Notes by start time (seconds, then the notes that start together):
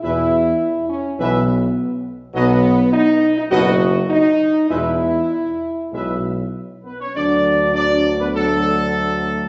0.03 E2 B2 E3 E4 B4 E5
0.89 C#4
1.19 B1 B2 E3 B3 B4 E5
2.34 B1 B2 F#3 B3 B4 D#5
2.92 D#4
3.37 D#4
3.50 F#1 B2 F#3 F#4 B4 D#5
4.10 D#4
4.70 E2 B2 G#3 E4 B4 E5
5.92 B1 B2 G#3 B4 E5
6.84 B3 B4
7.00 C#4 C#5
7.15 D2 D3 F#3 D4 D5
7.74 D3 F#3 D4 D5
8.20 B3 B4
8.34 D3 F#3 A3 A4